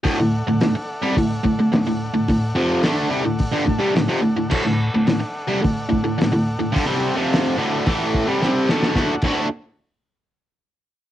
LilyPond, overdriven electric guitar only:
\new Staff \with { instrumentName = "Overdriven electric guitar" } { \clef bass \time 4/4 \key d \major \tempo 4 = 108 <d, a,>16 <d, a,>8 <d, a,>16 <d, a,>16 r8 <c g>16 <d, a,>8 <d, a,>16 <d, a,>16 <d, a,>16 <d, a,>8 <d, a,>16 | <d, a,>8 <f, c f>8 <d a d'>8 <c g>16 <d, a,>8 <g, d>16 <d, a,>16 <c g>16 <d, a,>16 <f, c>16 <d, a,>16 <d, a,>16 | <d, a,>16 <d, a,>8 <d, a,>16 <d, a,>16 r8 <c g>16 <d, a,>8 <d, a,>16 <d, a,>16 <d, a,>16 <d, a,>8 <d, a,>16 | <g, d>16 <c g c'>8 <f, c f>8. <d, a, d>8 <a, e a>8. <c g>16 <c g c'>8 <d, a, d>8 |
<d, a, d a fis'>16 r16 <d, a, d a fis'>8 r2. | }